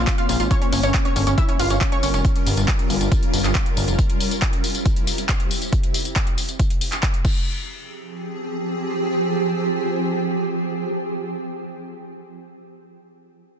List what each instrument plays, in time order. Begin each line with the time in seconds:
Already playing: ambient pad A#3 C4 C#4
0.07 synth pluck F5, kick, clap, closed hi-hat, tambourine
0.18 synth pluck F4 F5 F6, closed hi-hat
0.29 analog synth bass A#1, synth pluck F4 F5, open hi-hat, tambourine
0.40 analog synth bass G#1, synth pluck F4 F5, closed hi-hat, tambourine
0.51 ambient pad G3 F4 A#4, synth pluck C#4 C#5 C#6, kick, closed hi-hat, tambourine
0.62 synth pluck C#4 C#5, closed hi-hat
0.72 analog synth bass G1, synth pluck C#4 C#5, open hi-hat, tambourine
0.83 analog synth bass G1, synth pluck C#4 C#5 C#6, closed hi-hat, tambourine
0.94 synth pluck C#4 C#5, kick, clap, closed hi-hat, tambourine
1.05 synth pluck C#4 C#5 C#6, closed hi-hat
1.16 analog synth bass G1, synth pluck C#4 C#5, open hi-hat, tambourine
1.27 analog synth bass G1, synth pluck C#4 C#5, closed hi-hat, tambourine
1.38 synth pluck E4 E5 E6, kick, closed hi-hat, tambourine
1.49 synth pluck C#4 C#5, closed hi-hat
1.59 analog synth bass G1, synth pluck F4 F5 F6, open hi-hat, tambourine
1.70 analog synth bass G1, synth pluck C#4 C#5, closed hi-hat, tambourine
1.81 synth pluck C#5, kick, clap, closed hi-hat
1.92 synth pluck C#4 C#5 C#6, closed hi-hat
2.03 analog synth bass G1, synth pluck C#4 C#5, open hi-hat, tambourine
2.14 analog synth bass F1, synth pluck C#4 C#5, closed hi-hat, tambourine
2.25 kick, closed hi-hat, tambourine
2.36 closed hi-hat
2.46 analog synth bass G1, open hi-hat, tambourine
2.57 analog synth bass G1, closed hi-hat, tambourine
2.68 kick, clap, closed hi-hat, tambourine
2.79 closed hi-hat
2.90 analog synth bass G1, open hi-hat, tambourine
3.01 analog synth bass G1, closed hi-hat, tambourine
3.12 kick, closed hi-hat, tambourine
3.23 closed hi-hat
3.33 analog synth bass G1, open hi-hat, tambourine
3.44 analog synth bass G1, clap, closed hi-hat, tambourine
3.55 kick, clap, closed hi-hat
3.66 closed hi-hat
3.77 analog synth bass G1, open hi-hat, tambourine
3.88 analog synth bass F1, closed hi-hat, tambourine
3.99 ambient pad C3 C4 E4 G4, kick, closed hi-hat, tambourine
4.10 closed hi-hat
4.20 open hi-hat, tambourine
4.31 closed hi-hat, tambourine
4.42 kick, clap, closed hi-hat, tambourine
4.53 closed hi-hat
4.64 open hi-hat, tambourine
4.75 closed hi-hat, tambourine
4.86 kick, closed hi-hat, tambourine
4.96 closed hi-hat
5.07 open hi-hat, tambourine
5.18 closed hi-hat, tambourine
5.29 kick, clap, closed hi-hat, tambourine
5.40 closed hi-hat
5.51 open hi-hat, tambourine
5.62 closed hi-hat, tambourine
5.73 kick, closed hi-hat, tambourine
5.83 closed hi-hat
5.94 open hi-hat, tambourine
6.05 closed hi-hat, tambourine
6.16 kick, clap, closed hi-hat, tambourine
6.27 closed hi-hat
6.38 open hi-hat, tambourine
6.49 closed hi-hat, tambourine
6.59 kick, closed hi-hat, tambourine
6.70 closed hi-hat
6.81 open hi-hat, tambourine
6.92 clap, closed hi-hat, tambourine
7.03 kick, clap, closed hi-hat, tambourine
7.14 closed hi-hat
7.25 ambient pad F3 C4 G4 G#4, kick, crash